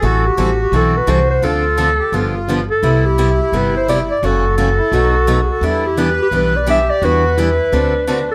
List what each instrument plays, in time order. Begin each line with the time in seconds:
Already playing: clarinet A4
0.02 upright bass A1, steel-string acoustic guitar E3 G3 C4 E4 A4, accordion F#4
0.27 clarinet G4
0.37 upright bass A1, steel-string acoustic guitar E3 G3 C4 E4 A4
0.62 clarinet G4
0.72 upright bass B1, steel-string acoustic guitar E3 G3 C4 E4 A4, clarinet A4
0.97 clarinet B4
1.07 upright bass C2, steel-string acoustic guitar E3 G3 C4 E4 A4, clarinet C5
1.31 clarinet C5
1.42 upright bass D2, steel-string acoustic guitar D3 F3 C4 D4 A4, accordion F4, clarinet A4
1.77 steel-string acoustic guitar D3 F3 C4 D4 A4, accordion A4
1.99 accordion G4
2.12 upright bass G1, steel-string acoustic guitar D3 F3 B3 D4 G4, accordion F4
2.47 steel-string acoustic guitar D3 F3 B3 D4 G4
2.71 clarinet A4
2.83 upright bass C2, steel-string acoustic guitar C3 G3 B3 E4 G4, accordion E4
3.06 clarinet G4
3.18 steel-string acoustic guitar C3 G3 B3 E4 G4
3.42 clarinet G4
3.52 upright bass G1, steel-string acoustic guitar C3 G3 B3 E4 G4, clarinet B4
3.77 clarinet C5
3.88 steel-string acoustic guitar C3 G3 B3 E4 G4, clarinet D5
4.11 clarinet D5
4.23 upright bass F#1, steel-string acoustic guitar C#3 E3 F#3 A3 C#4 E4 F#4 A4, accordion F#4, clarinet A4
4.57 steel-string acoustic guitar C#3 E3 F#3 A3 C#4 E4 F#4 A4, accordion F#4
4.78 accordion E4
4.92 upright bass B1, steel-string acoustic guitar B2 F#3 A3 D#4 F#4 B4, accordion F#4
5.28 steel-string acoustic guitar B2 F#3 A3 D#4 F#4 B4
5.43 clarinet G#4
5.51 clarinet A4
5.61 upright bass E2, steel-string acoustic guitar E3 G3 B3 D4 E4 G4 B4, accordion E4
5.87 clarinet G4
5.97 steel-string acoustic guitar E3 G3 B3 D4 E4 G4 B4, accordion B4
6.22 clarinet G4
6.31 upright bass B1, steel-string acoustic guitar E3 G3 B3 D4 E4 G4 B4
6.36 clarinet B4
6.56 clarinet D5
6.67 steel-string acoustic guitar E3 G3 B3 D4 E4 G4 B4, accordion G4, clarinet E5
6.90 clarinet D5
7.02 upright bass E2, steel-string acoustic guitar E3 G3 B3 D4 E4 G4 B4, accordion F#4, clarinet B4
7.37 steel-string acoustic guitar E3 G3 B3 D4 E4 G4 B4, accordion E4
7.72 upright bass D2, steel-string acoustic guitar D3 A3 C4 F#4 A4, accordion D4
8.06 steel-string acoustic guitar D3 A3 C4 F#4 A4, accordion D4
8.31 clarinet A4